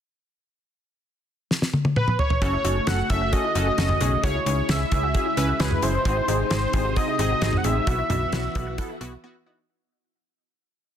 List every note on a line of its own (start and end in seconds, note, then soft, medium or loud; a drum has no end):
1.51 snare medium
1.62 snare medium
1.74 high tom medium
1.85 high tom medium
1.96 2.17 B4 medium
1.96 mid tom medium
2.08 mid tom medium
2.19 2.40 C#5 medium
2.19 floor tom medium
2.30 floor tom loud
2.42 2.58 F#1 loud
2.42 6.02 C#3 medium
2.42 4.22 A3 medium
2.42 2.54 C#4 medium
2.42 4.22 F#4 medium
2.42 2.54 F#4 medium
2.42 2.51 F#4 medium
2.42 2.54 A4 loud
2.42 2.89 C#5 loud
2.42 kick loud
2.42 closed hi-hat medium
2.53 2.63 E4 medium
2.64 2.80 F#1 medium
2.64 2.77 C#4 medium
2.64 2.83 D#4 medium
2.64 2.77 F#4 medium
2.64 2.77 A4 medium
2.64 closed hi-hat medium
2.87 3.03 F#1 loud
2.87 3.06 C#4 medium
2.87 2.99 C#4 medium
2.87 2.99 F#4 medium
2.87 2.99 A4 medium
2.87 3.09 F#5 loud
2.87 snare loud
2.87 closed hi-hat medium
3.10 3.34 F#1 loud
3.10 3.22 C#4 medium
3.10 3.19 E4 medium
3.10 3.22 F#4 medium
3.10 3.22 A4 medium
3.10 3.34 E5 loud
3.10 kick medium
3.10 closed hi-hat medium
3.21 3.31 F#4 medium
3.33 3.45 C#4 medium
3.33 3.45 F#4 medium
3.33 3.42 F#4 medium
3.33 3.45 A4 medium
3.33 4.23 D#5 loud
3.33 kick medium
3.33 closed hi-hat medium
3.44 3.63 E4 medium
3.55 3.71 F#1 loud
3.55 3.68 C#4 loud
3.55 3.67 F#4 medium
3.55 3.67 A4 loud
3.55 closed hi-hat medium
3.67 3.76 F#4 medium
3.78 3.94 F#1 loud
3.78 3.90 C#4 loud
3.78 3.90 F#4 medium
3.78 3.97 F#4 medium
3.78 3.90 A4 loud
3.78 snare loud
3.78 closed hi-hat medium
3.89 mid tom medium
4.01 4.17 B1 medium
4.01 4.13 C#4 medium
4.01 4.20 D#4 medium
4.01 4.13 F#4 medium
4.01 4.13 G#4 loud
4.01 closed hi-hat medium
4.24 4.39 C#2 loud
4.24 7.84 G#3 medium
4.24 4.36 C#4 medium
4.24 4.36 E4 medium
4.24 6.04 E4 medium
4.24 4.33 F#4 medium
4.24 4.36 G#4 loud
4.24 4.45 C#5 loud
4.24 kick loud
4.24 closed hi-hat medium
4.35 4.45 E4 medium
4.46 4.62 C#2 loud
4.46 4.58 C#4 medium
4.46 4.65 D#4 medium
4.46 4.58 E4 medium
4.46 4.58 G#4 medium
4.46 4.71 C#5 medium
4.46 closed hi-hat medium
4.69 4.85 C#2 loud
4.69 4.81 C#4 medium
4.69 4.88 C#4 medium
4.69 4.81 E4 medium
4.69 4.81 G#4 medium
4.69 5.62 E5 loud
4.69 snare loud
4.69 closed hi-hat medium
4.92 5.16 C#2 loud
4.92 5.04 C#4 medium
4.92 5.04 E4 medium
4.92 5.01 E4 medium
4.92 5.04 G#4 medium
4.92 kick medium
4.92 closed hi-hat medium
5.03 5.13 F#4 medium
5.14 5.27 C#4 medium
5.14 5.27 E4 medium
5.14 5.24 F#4 medium
5.14 5.27 G#4 medium
5.14 kick medium
5.14 closed hi-hat medium
5.26 5.45 E4 medium
5.37 5.53 C#2 loud
5.37 5.49 C#4 loud
5.37 5.49 E4 loud
5.37 5.49 B4 loud
5.37 closed hi-hat medium
5.49 5.58 F#4 medium
5.60 5.76 C#2 loud
5.60 5.72 C#4 loud
5.60 5.72 E4 medium
5.60 5.79 F#4 medium
5.60 5.72 G#4 loud
5.60 5.84 B4 medium
5.60 snare loud
5.60 closed hi-hat medium
5.71 mid tom medium
5.82 5.99 F#1 medium
5.82 5.95 C#4 medium
5.82 5.95 E4 medium
5.82 6.02 E4 medium
5.82 5.95 G#4 medium
5.82 6.50 C5 loud
5.82 closed hi-hat medium
6.05 6.21 G#1 loud
6.05 7.85 C3 medium
6.05 6.17 C4 medium
6.05 6.17 D#4 medium
6.05 7.85 D#4 medium
6.05 6.15 F#4 loud
6.05 6.17 G#4 loud
6.05 kick loud
6.05 closed hi-hat medium
6.17 6.26 E4 medium
6.28 6.44 G#1 loud
6.28 6.40 C4 medium
6.28 6.40 D#4 medium
6.28 6.47 D#4 medium
6.28 6.40 G#4 medium
6.28 closed hi-hat medium
6.51 6.67 G#1 loud
6.51 6.63 C4 medium
6.51 6.70 C4 medium
6.51 6.63 D#4 medium
6.51 6.63 G#4 medium
6.51 6.98 C5 medium
6.51 snare loud
6.51 closed hi-hat medium
6.73 6.97 G#1 loud
6.73 6.86 C4 medium
6.73 6.86 D#4 medium
6.73 6.83 E4 medium
6.73 6.86 G#4 medium
6.73 kick loud
6.73 closed hi-hat medium
6.85 6.94 F#4 medium
6.96 7.09 C4 medium
6.96 7.09 D#4 medium
6.96 7.06 F#4 medium
6.96 7.08 G#4 medium
6.96 7.18 D#5 loud
6.96 kick medium
6.96 closed hi-hat medium
7.08 7.27 E4 medium
7.19 7.35 G#1 loud
7.19 7.31 C4 loud
7.19 7.31 D#4 medium
7.19 7.31 G#4 loud
7.19 7.59 D#5 loud
7.19 closed hi-hat medium
7.31 7.40 F#4 medium
7.42 7.58 G#1 loud
7.42 7.54 C4 loud
7.42 7.54 D#4 medium
7.42 7.61 F#4 medium
7.42 7.54 G#4 loud
7.42 snare loud
7.42 closed hi-hat medium
7.53 mid tom medium
7.57 7.66 F#5 medium
7.64 7.80 A1 medium
7.64 7.77 C4 medium
7.64 7.77 D#4 medium
7.64 7.83 D#4 medium
7.64 7.77 G#4 medium
7.64 9.24 E5 loud
7.64 closed hi-hat medium
7.87 8.03 B1 loud
7.87 9.67 E3 medium
7.87 9.67 B3 medium
7.87 7.99 B3 medium
7.87 7.99 E4 medium
7.87 9.67 F#4 medium
7.87 7.99 F#4 loud
7.87 7.97 F#4 loud
7.87 kick loud
7.87 closed hi-hat medium
7.99 8.08 E4 medium
8.10 8.26 B1 loud
8.10 8.22 B3 medium
8.10 8.29 D#4 medium
8.10 8.22 E4 medium
8.10 8.22 F#4 medium
8.10 closed hi-hat medium
8.10 mid tom medium
8.32 8.49 B1 loud
8.32 8.45 B3 medium
8.32 8.52 C#4 medium
8.32 8.45 E4 medium
8.32 8.45 F#4 loud
8.32 snare loud
8.32 closed hi-hat medium
8.55 8.79 B1 loud
8.55 8.68 B3 medium
8.55 8.65 E4 medium
8.55 8.68 E4 medium
8.55 8.68 F#4 loud
8.55 kick loud
8.55 closed hi-hat medium
8.67 8.76 F#4 medium
8.78 8.90 B3 loud
8.78 8.90 E4 medium
8.78 8.88 F#4 medium
8.78 8.90 A4 loud
8.78 kick medium
8.78 closed hi-hat medium
8.90 9.08 E4 medium
9.01 9.17 B1 medium
9.01 9.13 B3 loud
9.01 9.13 E4 loud
9.01 9.13 F#4 loud
9.01 closed hi-hat medium
9.12 9.22 F#4 medium
9.24 9.36 B3 loud
9.24 9.36 E4 loud
9.24 9.43 F#4 medium
9.24 9.36 F#4 loud
9.46 9.58 B3 medium
9.46 9.65 D#4 medium
9.46 9.59 E4 medium
9.46 9.58 F#4 loud